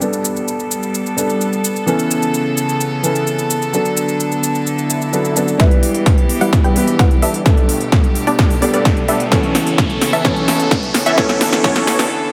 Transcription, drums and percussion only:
0.01 shaker
0.13 shaker
0.25 shaker
0.36 shaker
0.48 shaker
0.60 shaker
0.71 shaker
0.83 shaker
0.95 shaker
1.06 shaker
1.18 shaker
1.29 shaker
1.41 shaker
1.53 shaker
1.64 shaker
1.76 shaker
1.88 shaker
1.99 shaker
2.11 shaker
2.22 shaker
2.34 shaker
2.57 shaker
2.69 shaker
2.81 shaker
3.04 shaker
3.15 shaker
3.27 shaker
3.39 shaker
3.50 shaker
3.62 shaker
3.74 shaker
3.85 shaker
3.97 shaker
4.09 shaker
4.20 shaker
4.32 shaker
4.43 shaker
4.55 shaker
4.67 shaker
4.78 shaker
4.90 shaker
5.02 shaker
5.13 shaker
5.25 shaker
5.36 shaker
5.48 shaker
5.60 kick, snare, closed hi-hat
5.71 closed hi-hat
5.83 open hi-hat
5.95 closed hi-hat
6.06 kick, snare, closed hi-hat
6.18 closed hi-hat
6.29 open hi-hat
6.41 open hi-hat
6.53 kick, snare, closed hi-hat
6.64 closed hi-hat
6.76 open hi-hat
6.87 closed hi-hat
6.99 kick, snare, closed hi-hat
7.11 closed hi-hat
7.22 open hi-hat
7.34 closed hi-hat
7.46 kick, snare, closed hi-hat
7.57 closed hi-hat
7.69 open hi-hat
7.81 closed hi-hat
7.92 kick, snare, closed hi-hat
8.04 closed hi-hat
8.15 open hi-hat
8.27 open hi-hat
8.39 kick, snare, closed hi-hat
8.50 open hi-hat
8.62 open hi-hat
8.74 closed hi-hat
8.85 kick, snare, closed hi-hat
8.97 closed hi-hat
9.08 open hi-hat
9.20 closed hi-hat
9.32 kick, snare, closed hi-hat
9.43 closed hi-hat
9.55 snare, open hi-hat
9.67 closed hi-hat
9.78 kick, snare, closed hi-hat
9.90 closed hi-hat
10.01 snare, open hi-hat
10.13 open hi-hat
10.25 kick, snare, closed hi-hat
10.36 closed hi-hat
10.48 snare, open hi-hat
10.60 closed hi-hat
10.71 kick, snare, closed hi-hat
10.83 closed hi-hat
10.94 snare, open hi-hat
11.06 closed hi-hat
11.18 kick, snare, closed hi-hat
11.29 snare, closed hi-hat
11.41 snare, open hi-hat
11.53 snare, closed hi-hat
11.64 kick, snare, closed hi-hat
11.76 snare, closed hi-hat
11.87 snare, open hi-hat
11.99 snare, open hi-hat

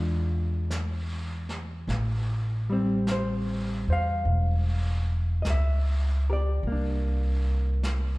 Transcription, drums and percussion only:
0.70 brush sweep, snare, hi-hat pedal
1.49 snare
1.89 brush sweep, snare
3.07 brush sweep, snare, hi-hat pedal
4.26 brush sweep
5.45 brush sweep, snare, hi-hat pedal
6.63 brush sweep
7.83 brush sweep, snare, hi-hat pedal

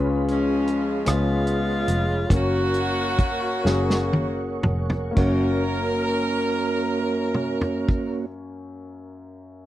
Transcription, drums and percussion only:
0.28 closed hi-hat
0.67 closed hi-hat
1.06 cross-stick, closed hi-hat
1.47 closed hi-hat
1.88 closed hi-hat
2.30 kick, closed hi-hat
2.74 closed hi-hat
3.19 kick, closed hi-hat
3.66 snare
3.90 snare
4.13 high tom
4.63 mid tom
4.90 floor tom
5.17 kick, crash
7.34 mid tom
7.61 floor tom
7.89 kick

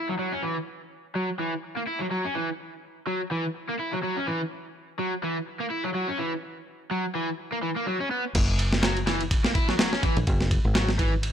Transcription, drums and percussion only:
8.35 kick, crash, ride
8.59 ride
8.73 snare
8.83 snare, ride
8.97 ride
9.07 snare, ride
9.21 ride
9.31 kick, ride
9.45 snare
9.55 kick, ride
9.69 snare
9.79 snare, ride
9.93 snare
10.03 kick, ride
10.17 ride
10.27 kick, ride
10.41 snare
10.51 kick, ride
10.75 snare, ride
10.89 snare
10.99 kick, ride
11.23 ride

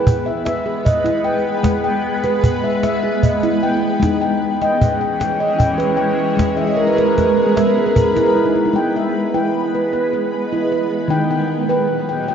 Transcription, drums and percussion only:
0.07 cajon bass
0.46 cajon slap
0.86 cajon bass
1.06 cajon slap
1.45 cajon slap
1.64 cajon bass, cajon slap
2.24 cajon slap
2.44 cajon bass
2.83 cajon slap
3.23 cajon bass
3.43 cajon slap
3.83 cajon slap
4.03 cajon bass, cajon slap
4.61 cajon slap
4.81 cajon bass
5.21 cajon slap
5.60 cajon bass
5.80 cajon slap
6.19 cajon slap
6.39 cajon bass, cajon slap
6.98 cajon slap
7.18 cajon bass, cajon slap
7.57 cajon slap
7.96 cajon bass
8.16 cajon slap
8.56 cajon slap

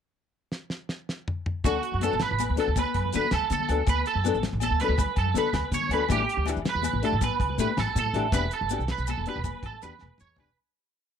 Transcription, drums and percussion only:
0.52 snare
0.70 snare
0.89 snare
1.09 snare
1.28 mid tom
1.46 mid tom
1.64 kick, closed hi-hat, high conga, low conga, low agogo, maracas
1.83 closed hi-hat
1.92 low conga
2.01 closed hi-hat, high conga, low agogo, maracas
2.12 maracas
2.20 snare, closed hi-hat, low conga, maracas
2.39 closed hi-hat, high conga, low agogo, maracas
2.50 low conga
2.57 closed hi-hat, maracas
2.76 kick, closed hi-hat, high conga, low conga, low agogo, maracas
2.94 kick, closed hi-hat, low agogo
3.05 low conga
3.12 closed hi-hat, high conga, low conga, maracas
3.31 snare, closed hi-hat, low conga, low agogo
3.42 low conga
3.50 closed hi-hat, high conga, maracas
3.60 low conga
3.69 closed hi-hat, low agogo
3.86 kick, closed hi-hat, high conga, low conga, low agogo, maracas
4.06 closed hi-hat
4.15 low conga
4.24 closed hi-hat, high conga, low agogo, maracas
4.34 maracas
4.43 snare, closed hi-hat, low conga, maracas
4.60 closed hi-hat, high conga, low agogo, maracas
4.69 low conga
4.80 closed hi-hat, maracas
4.98 kick, closed hi-hat, high conga, low conga, low agogo, maracas
5.16 kick, closed hi-hat, low agogo
5.26 low conga
5.34 closed hi-hat, high conga, low conga, maracas
5.53 snare, closed hi-hat, low conga, low agogo
5.64 low conga
5.72 closed hi-hat, high conga, maracas
5.81 low conga
5.91 closed hi-hat, low agogo
6.09 kick, closed hi-hat, high conga, low conga, low agogo, maracas
6.29 closed hi-hat
6.37 low conga
6.46 closed hi-hat, high conga, low agogo, maracas
6.56 maracas
6.65 snare, closed hi-hat, low conga, maracas
6.83 closed hi-hat, high conga, low agogo, maracas
6.92 low conga
7.03 closed hi-hat
7.21 kick, closed hi-hat, high conga, low conga, low agogo, maracas
7.40 kick, closed hi-hat, low agogo
7.50 low conga
7.58 closed hi-hat, high conga, low conga, maracas
7.77 snare, closed hi-hat, low conga, low agogo
7.88 low conga
7.96 closed hi-hat, high conga, maracas
8.05 low conga
8.14 closed hi-hat, low agogo
8.32 kick, closed hi-hat, high conga, low conga, low agogo, maracas
8.51 closed hi-hat, low conga, maracas
8.62 low conga
8.69 closed hi-hat, high conga, low agogo, maracas
8.80 low conga, maracas
8.88 snare, closed hi-hat, low conga
8.98 low conga, maracas
9.07 closed hi-hat, high conga, low agogo, maracas
9.18 low conga
9.26 closed hi-hat
9.44 kick, closed hi-hat, high conga, low conga, low agogo, maracas
9.63 kick, closed hi-hat, low agogo
9.73 low conga
9.82 closed hi-hat, high conga, maracas
9.99 snare, high conga, low agogo
10.18 mid tom, low conga, maracas
10.37 floor tom, low conga, low agogo
10.49 maracas

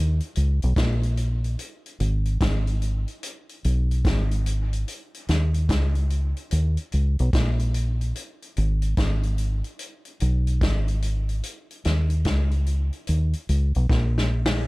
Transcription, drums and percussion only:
0.20 closed hi-hat
0.35 closed hi-hat
0.62 closed hi-hat
0.76 kick, snare, closed hi-hat
1.03 closed hi-hat
1.17 closed hi-hat
1.44 closed hi-hat
1.59 closed hi-hat
1.86 closed hi-hat
2.00 closed hi-hat
2.25 closed hi-hat
2.41 kick, snare, closed hi-hat
2.67 closed hi-hat
2.82 closed hi-hat
3.08 closed hi-hat
3.23 closed hi-hat
3.49 closed hi-hat
3.64 closed hi-hat
3.91 closed hi-hat
4.05 kick, snare, closed hi-hat
4.31 closed hi-hat
4.46 closed hi-hat
4.73 closed hi-hat
4.88 closed hi-hat
5.14 closed hi-hat
5.28 snare, closed hi-hat
5.54 closed hi-hat
5.69 kick, snare, closed hi-hat
5.95 closed hi-hat
6.10 closed hi-hat
6.37 closed hi-hat
6.51 closed hi-hat
6.77 closed hi-hat
6.92 closed hi-hat
7.19 closed hi-hat
7.33 kick, snare, closed hi-hat
7.59 closed hi-hat
7.74 closed hi-hat
8.01 closed hi-hat
8.15 closed hi-hat
8.42 closed hi-hat
8.57 closed hi-hat
8.82 closed hi-hat
8.97 kick, snare, closed hi-hat
9.23 closed hi-hat
9.38 closed hi-hat
9.64 closed hi-hat
9.79 closed hi-hat
10.05 closed hi-hat
10.20 closed hi-hat
10.47 closed hi-hat
10.61 kick, snare, closed hi-hat
10.88 closed hi-hat
11.02 closed hi-hat
11.29 closed hi-hat
11.43 closed hi-hat
11.71 closed hi-hat
11.85 snare, closed hi-hat
12.10 closed hi-hat
12.25 kick, snare, closed hi-hat
12.51 closed hi-hat
12.66 closed hi-hat
12.93 closed hi-hat
13.07 closed hi-hat
13.33 closed hi-hat
13.49 closed hi-hat
13.75 closed hi-hat
13.90 kick, snare
14.18 snare
14.46 snare

